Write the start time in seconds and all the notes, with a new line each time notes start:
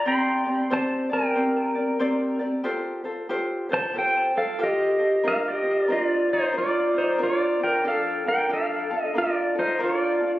0.06 C4 G4 C5 D5 G5 C6
0.45 C4 G4 D5
0.70 C4 G4 C5 D5 A5
1.09 C4 G4 A#4 D5 G5
1.35 C4 G4 C5 D5
1.75 C4 G4 D5
1.99 C4 G4 C5 D5
2.39 C4 G4 D5
2.64 F4 G4 A4 C5
3.04 F4 A4 C5
3.29 F4 G4 A4 C5
3.69 F4 A4 C5
3.73 C5 A5
3.94 F4 G4 A4 C5
3.98 C5 G5
4.34 F4 A4 C5
4.38 F5
4.59 F4 G4 A4 C5
4.63 G4 D#5
4.98 F4 A4 C5
5.23 D4 F4 A#4 C5
5.28 A#4 F5
5.48 G4 D#5
5.63 F4 C5
5.88 D4 F4 A#4 C5 D#5
5.92 F4
6.03 D5
6.28 F4 C5
6.33 D#4 C5
6.53 D4 F4 A#4 C5
6.58 F4 D5
6.93 F4 C5
6.98 D#4 C5
7.18 D4 F4 A#4 C5
7.23 F4 D5
7.59 D4 F4 C5
7.64 A#4 G5
7.84 D4 F4 A4 F5
8.25 D4 F4 A#4 G5
8.49 D4 F4 A4
8.54 F5
8.90 D4 F4 A4
9.03 D#5
9.14 D4 F4 A4 A#4
9.18 D5
9.55 D#4 F4 A4
9.59 C5
9.79 D4 F4 A4 A#4
9.84 F4 D5
10.20 D4 F4 A4